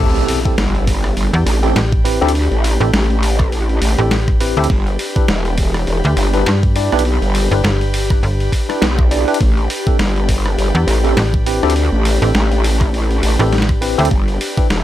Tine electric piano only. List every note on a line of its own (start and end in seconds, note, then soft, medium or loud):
0.00 0.39 C4 loud
0.00 0.39 E4 medium
0.00 0.39 G4 medium
0.00 0.39 A4 loud
0.45 0.55 C4 medium
0.45 0.55 E4 medium
0.45 0.55 G4 medium
0.45 0.55 A4 medium
1.63 1.79 C4 medium
1.63 1.79 E4 medium
1.63 1.79 G4 medium
1.63 1.79 A4 medium
2.05 2.19 C4 medium
2.05 2.19 E4 medium
2.05 2.19 G4 medium
2.05 2.19 B4 medium
2.21 2.31 C4 medium
2.21 2.31 E4 medium
2.21 2.31 G4 medium
2.21 2.31 A4 loud
2.80 2.90 C4 medium
2.80 2.90 E4 medium
2.80 2.90 G4 medium
2.80 2.90 A4 medium
3.98 4.14 C4 medium
3.98 4.14 E4 medium
3.98 4.14 G4 medium
3.98 4.14 A4 medium
4.40 4.55 C4 medium
4.40 4.55 E4 medium
4.40 4.55 G4 medium
4.40 4.55 B4 medium
4.57 4.66 C4 medium
4.57 4.67 E4 medium
4.57 4.67 G4 medium
4.57 4.66 A4 loud
5.16 5.25 D4 medium
5.16 5.25 E4 medium
5.16 5.25 G4 medium
5.16 5.25 B4 medium
6.34 6.49 D4 medium
6.34 6.49 E4 medium
6.34 6.49 G4 medium
6.34 6.49 B4 medium
6.76 6.90 D4 medium
6.76 6.90 E4 medium
6.76 6.90 G4 medium
6.76 6.90 D5 medium
6.93 7.02 D4 medium
6.93 7.02 E4 medium
6.93 7.02 G4 medium
6.93 7.02 B4 loud
7.52 7.61 D4 medium
7.52 7.61 E4 medium
7.52 7.61 G4 medium
7.52 7.61 B4 medium
8.69 8.85 D4 medium
8.69 8.85 E4 medium
8.69 8.85 G4 medium
8.69 8.85 B4 medium
9.11 9.25 D4 medium
9.11 9.25 E4 medium
9.11 9.25 G4 medium
9.11 9.25 D5 medium
9.28 9.37 D4 medium
9.28 9.37 E4 medium
9.28 9.37 G4 medium
9.28 9.37 B4 loud
9.87 9.96 C4 medium
9.87 9.96 E4 medium
9.87 9.96 G4 medium
9.87 9.96 A4 medium
11.04 11.20 C4 medium
11.04 11.20 E4 medium
11.04 11.20 G4 medium
11.04 11.20 A4 medium
11.46 11.61 C4 medium
11.46 11.61 E4 medium
11.46 11.61 G4 medium
11.46 11.61 B4 medium
11.63 11.72 C4 medium
11.63 11.72 E4 medium
11.63 11.72 G4 medium
11.63 11.72 A4 loud
12.22 12.31 C4 medium
12.22 12.31 E4 medium
12.22 12.31 G4 medium
12.22 12.31 A4 medium
13.40 13.55 C4 medium
13.40 13.55 E4 medium
13.40 13.55 G4 medium
13.40 13.55 A4 medium
13.81 13.96 C4 medium
13.81 13.96 E4 medium
13.81 13.96 G4 medium
13.81 13.96 B4 medium
13.98 14.08 C4 loud
13.98 14.08 E4 medium
13.98 14.08 G4 medium
13.98 14.08 A4 loud
14.57 14.67 D4 medium
14.57 14.67 E4 medium
14.57 14.67 G4 medium
14.57 14.67 B4 medium